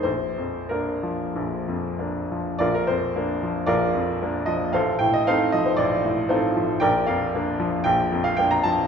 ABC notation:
X:1
M:4/4
L:1/16
Q:1/4=113
K:Bb
V:1 name="Upright piano"
c4 B8 z4 | [FBd] B c6 [FBd]6 e2 | [Acf]2 g e [Acf]2 e c d4 [FAc]4 | [Bdg]2 [Bdf]6 g3 f g b a2 |]
V:2 name="Upright piano" clef=bass
B,,,2 F,,2 [B,D]2 F,2 B,,,2 F,,2 [B,D]2 F,2 | B,,,2 F,,2 [B,D]2 F,2 B,,,2 F,,2 [B,D]2 F,2 | A,,,2 A,,2 [CE]2 F,2 A,,,2 A,,2 [CE]2 F,2 | B,,,2 F,,2 [B,D]2 F,2 B,,,2 F,,2 [B,D]2 F,2 |]